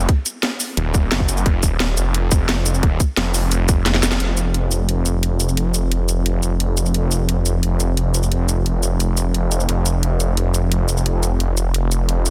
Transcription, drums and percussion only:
0.00 shaker soft
0.09 kick loud
0.09 closed hi-hat medium
0.26 closed hi-hat medium
0.26 shaker medium
0.43 snare loud
0.43 closed hi-hat medium
0.60 open hi-hat medium
0.60 shaker medium
0.77 closed hi-hat medium
0.94 kick loud
0.94 closed hi-hat medium
0.94 shaker medium
1.12 snare loud
1.12 closed hi-hat medium
1.20 kick medium
1.29 closed hi-hat medium
1.29 shaker medium
1.37 shaker soft
1.46 kick loud
1.46 closed hi-hat loud
1.63 kick medium
1.63 closed hi-hat medium
1.63 shaker medium
1.80 snare loud
1.80 closed hi-hat medium
1.97 closed hi-hat medium
1.97 shaker medium
2.14 closed hi-hat medium
2.32 kick loud
2.32 closed hi-hat medium
2.32 shaker medium
2.49 snare loud
2.49 closed hi-hat medium
2.66 closed hi-hat medium
2.66 shaker medium
2.74 shaker soft
2.83 kick loud
2.83 closed hi-hat loud
3.00 kick medium
3.00 closed hi-hat medium
3.00 shaker medium
3.17 snare loud
3.17 closed hi-hat medium
3.34 open hi-hat medium
3.34 shaker medium
3.52 closed hi-hat loud
3.52 shaker soft
3.69 kick loud
3.69 closed hi-hat medium
3.69 shaker medium
3.86 snare medium
3.86 closed hi-hat loud
3.94 snare medium
4.03 snare medium
4.03 closed hi-hat medium
4.03 shaker medium
4.12 snare medium
4.12 shaker soft
4.20 closed hi-hat medium
4.37 closed hi-hat medium
4.37 shaker medium
4.54 closed hi-hat medium
4.72 closed hi-hat medium
4.72 shaker medium
4.89 closed hi-hat loud
5.06 closed hi-hat medium
5.06 shaker medium
5.23 closed hi-hat medium
5.40 closed hi-hat medium
5.40 shaker medium
5.49 shaker soft
5.57 closed hi-hat loud
5.74 closed hi-hat medium
5.74 shaker medium
5.92 closed hi-hat medium
6.09 closed hi-hat medium
6.09 shaker medium
6.26 closed hi-hat medium
6.43 closed hi-hat medium
6.43 shaker medium
6.60 closed hi-hat loud
6.77 closed hi-hat medium
6.77 shaker medium
6.86 shaker soft
6.94 closed hi-hat medium
7.12 closed hi-hat medium
7.12 shaker medium
7.29 closed hi-hat medium
7.46 closed hi-hat medium
7.46 shaker medium
7.63 closed hi-hat medium
7.80 closed hi-hat medium
7.80 shaker medium
7.97 closed hi-hat medium
8.14 closed hi-hat medium
8.14 shaker medium
8.23 shaker soft
8.32 closed hi-hat medium
8.49 closed hi-hat medium
8.49 shaker medium
8.66 closed hi-hat medium
8.83 closed hi-hat medium
8.83 shaker medium
9.00 closed hi-hat medium
9.00 shaker soft
9.17 closed hi-hat medium
9.17 shaker medium
9.34 closed hi-hat medium
9.52 closed hi-hat medium
9.52 shaker medium
9.60 shaker soft
9.69 closed hi-hat medium
9.86 closed hi-hat medium
9.86 shaker medium
10.03 closed hi-hat medium
10.20 closed hi-hat medium
10.20 shaker medium
10.37 closed hi-hat medium
10.54 closed hi-hat medium
10.54 shaker medium
10.72 closed hi-hat medium
10.89 closed hi-hat medium
10.89 shaker medium
10.97 shaker soft
11.06 closed hi-hat medium
11.23 closed hi-hat medium
11.23 shaker medium
11.40 closed hi-hat medium
11.57 closed hi-hat medium
11.57 shaker medium
11.74 closed hi-hat medium
11.92 closed hi-hat medium
11.92 shaker medium
12.09 closed hi-hat medium
12.26 closed hi-hat medium
12.26 shaker medium

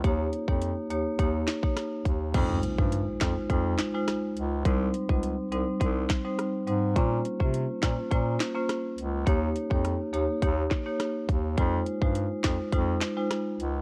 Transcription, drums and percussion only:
0.04 kick loud
0.04 closed hi-hat medium
0.33 closed hi-hat medium
0.48 kick medium
0.62 closed hi-hat medium
0.90 closed hi-hat medium
1.19 kick loud
1.19 closed hi-hat medium
1.48 snare loud
1.48 clap medium
1.48 closed hi-hat medium
1.63 kick loud
1.77 cross-stick medium
1.77 snare medium
1.77 closed hi-hat medium
2.06 kick medium
2.06 closed hi-hat soft
2.34 kick loud
2.34 closed hi-hat medium
2.34 crash loud
2.63 closed hi-hat medium
2.79 kick medium
2.92 closed hi-hat medium
3.21 kick loud
3.21 snare loud
3.21 clap loud
3.21 closed hi-hat medium
3.50 kick loud
3.50 closed hi-hat medium
3.79 snare loud
3.79 clap medium
3.79 closed hi-hat medium
4.08 cross-stick loud
4.08 snare medium
4.08 closed hi-hat medium
4.37 closed hi-hat medium
4.65 kick loud
4.65 closed hi-hat medium
4.94 closed hi-hat medium
5.09 kick medium
5.23 closed hi-hat medium
5.52 closed hi-hat medium
5.81 kick loud
5.81 closed hi-hat medium
6.10 kick loud
6.10 snare loud
6.10 clap medium
6.10 closed hi-hat medium
6.39 cross-stick loud
6.39 closed hi-hat medium
6.67 closed hi-hat soft
6.96 kick loud
6.96 closed hi-hat medium
7.25 closed hi-hat medium
7.40 kick medium
7.54 closed hi-hat medium
7.83 kick loud
7.83 snare loud
7.83 clap loud
7.83 closed hi-hat medium
8.11 kick loud
8.11 closed hi-hat medium
8.40 snare loud
8.40 clap medium
8.40 closed hi-hat medium
8.69 cross-stick loud
8.69 snare medium
8.69 closed hi-hat medium
8.98 closed hi-hat soft
9.27 kick loud
9.27 closed hi-hat medium
9.56 closed hi-hat medium
9.71 kick medium
9.85 cross-stick medium
9.85 closed hi-hat medium
10.14 closed hi-hat medium
10.42 kick loud
10.42 closed hi-hat medium
10.71 kick loud
10.71 snare loud
10.71 clap medium
10.71 closed hi-hat medium
11.00 cross-stick loud
11.00 snare medium
11.00 closed hi-hat medium
11.29 kick loud
11.29 closed hi-hat soft
11.58 kick loud
11.58 closed hi-hat medium
11.86 closed hi-hat medium
12.02 kick medium
12.15 closed hi-hat medium
12.44 kick loud
12.44 snare loud
12.44 clap loud
12.44 closed hi-hat medium
12.73 kick medium
12.73 closed hi-hat medium
13.02 snare loud
13.02 clap medium
13.02 closed hi-hat medium
13.31 cross-stick loud
13.31 snare medium
13.31 closed hi-hat medium
13.60 closed hi-hat soft

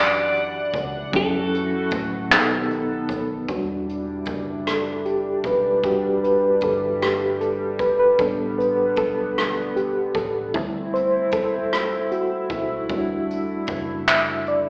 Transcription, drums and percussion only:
0.35 closed hi-hat soft
0.74 kick medium
0.74 closed hi-hat medium
1.13 kick loud
1.13 closed hi-hat medium
1.54 closed hi-hat soft
1.91 kick loud
1.91 closed hi-hat medium
2.32 clap loud
2.32 closed hi-hat medium
2.70 closed hi-hat soft
3.09 kick medium
3.09 closed hi-hat medium
3.48 kick loud
3.48 closed hi-hat medium
3.89 closed hi-hat soft
4.25 kick medium
4.25 closed hi-hat medium
4.67 cross-stick loud
4.67 closed hi-hat medium
5.05 closed hi-hat soft
5.44 kick medium
5.44 closed hi-hat medium
5.83 kick medium
5.83 closed hi-hat medium
6.24 closed hi-hat soft
6.61 kick medium
6.61 closed hi-hat medium
7.02 cross-stick loud
7.02 closed hi-hat medium
7.41 closed hi-hat soft
7.79 kick medium
7.79 closed hi-hat medium
8.19 kick loud
8.19 closed hi-hat medium
8.60 closed hi-hat soft
8.96 kick medium
8.96 closed hi-hat medium
9.38 cross-stick loud
9.38 closed hi-hat medium
9.77 closed hi-hat soft
10.15 kick medium
10.15 closed hi-hat medium
10.54 kick loud
10.54 closed hi-hat medium
10.95 closed hi-hat soft
11.31 kick medium
11.31 closed hi-hat medium
11.72 cross-stick loud
11.72 closed hi-hat medium
12.11 closed hi-hat soft
12.50 kick medium
12.50 closed hi-hat medium
12.89 kick loud
12.89 closed hi-hat medium
13.30 closed hi-hat medium
13.67 kick loud
13.67 closed hi-hat medium
14.08 clap loud
14.08 closed hi-hat medium
14.47 closed hi-hat soft

